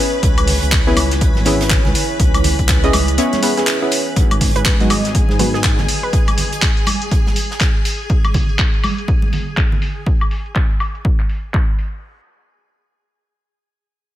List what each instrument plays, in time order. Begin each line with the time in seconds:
Already playing: synth stab B3 C#4 E4 G#4 B4, ambient pad E4 B4 C#5 G#5, string machine B4 B5
0.23 analog synth bass C#2, kick, closed hi-hat
0.38 closed hi-hat, high conga, high woodblock
0.47 open hi-hat, low conga
0.62 analog synth bass C#2, closed hi-hat
0.72 kick, snare, clap, closed hi-hat
0.86 synth stab B3 C#4 E4 G#4 B4, snare
0.96 analog synth bass C#2, closed hi-hat, open hi-hat, high conga, high woodblock
1.11 snare, closed hi-hat
1.21 kick, closed hi-hat
1.35 analog synth bass G#1, snare, high conga
1.45 synth stab B3 C#4 E4 G#4 B4, snare, closed hi-hat, open hi-hat, low conga
1.61 snare, closed hi-hat
1.70 kick, snare, clap, closed hi-hat
1.85 analog synth bass C#2, snare, low conga
1.95 closed hi-hat, open hi-hat
2.20 analog synth bass C#2, kick, closed hi-hat
2.34 closed hi-hat, high conga, high woodblock
2.44 closed hi-hat, open hi-hat, low conga
2.59 analog synth bass C#2, kick, closed hi-hat
2.69 kick, snare, clap, closed hi-hat
2.83 synth stab B3 C#4 E4 G#4 D#5, closed hi-hat
2.93 analog synth bass C#2, closed hi-hat, open hi-hat, high conga, high woodblock
3.08 closed hi-hat
3.18 synth stab B3 C#4 E4 G#4 C#5, closed hi-hat
3.33 snare, closed hi-hat, high conga
3.42 synth stab B3 C#4 E4 G#4 B4, closed hi-hat, open hi-hat
3.57 synth stab B3 C#4 E4 G#4 B4, snare, closed hi-hat
3.67 snare, clap, closed hi-hat
3.82 synth stab B3 C#4 E4 G#4 B4
3.92 closed hi-hat, open hi-hat
4.16 analog synth bass G#1, ambient pad F#4 B4 D#5 G#5, string machine G#4 G#5, kick, closed hi-hat
4.31 closed hi-hat, high conga, high woodblock
4.41 kick, open hi-hat, low conga
4.56 analog synth bass G#1, synth pluck B4, closed hi-hat
4.65 synth pluck B4, kick, snare, clap, closed hi-hat
4.80 synth stab F#3 G#3 B3 D#4 F#4, snare, closed hi-hat
4.90 analog synth bass G#1, synth pluck D#5, closed hi-hat, open hi-hat, high conga, high woodblock
5.05 snare, closed hi-hat
5.15 kick, closed hi-hat
5.29 analog synth bass G#2, snare, high conga
5.39 synth stab F#3 G#3 B3 D#4 F#4, synth pluck B4, closed hi-hat, open hi-hat, low conga
5.54 synth pluck G#4, snare
5.64 kick, snare, clap, closed hi-hat
5.78 analog synth bass G#1, snare, low conga
5.88 closed hi-hat, open hi-hat
6.03 synth pluck B4
6.13 kick, closed hi-hat
6.28 closed hi-hat, high conga, high woodblock
6.38 closed hi-hat, open hi-hat, low conga
6.52 closed hi-hat
6.62 kick, snare, clap, closed hi-hat
6.77 closed hi-hat
6.87 closed hi-hat, open hi-hat, high conga, high woodblock
7.02 closed hi-hat
7.11 kick, closed hi-hat
7.26 snare, high conga
7.36 closed hi-hat, open hi-hat
7.51 snare
7.60 kick, snare, clap, closed hi-hat
7.85 closed hi-hat, open hi-hat
8.10 kick, closed hi-hat
8.24 closed hi-hat, high conga, high woodblock
8.34 kick, open hi-hat, low conga
8.49 closed hi-hat
8.59 kick, clap, closed hi-hat
8.74 closed hi-hat
8.84 open hi-hat, high conga, high woodblock
8.98 closed hi-hat
9.08 kick, closed hi-hat
9.22 high conga
9.33 open hi-hat, low conga
9.57 kick, clap, closed hi-hat
9.72 low conga
9.82 open hi-hat
10.06 kick, closed hi-hat
10.21 closed hi-hat, high woodblock
10.31 open hi-hat
10.46 closed hi-hat
10.55 kick, clap, closed hi-hat
10.70 closed hi-hat
10.80 open hi-hat, high woodblock
10.95 closed hi-hat
11.05 kick, closed hi-hat
11.19 clap
11.29 open hi-hat
11.54 kick, clap
11.79 open hi-hat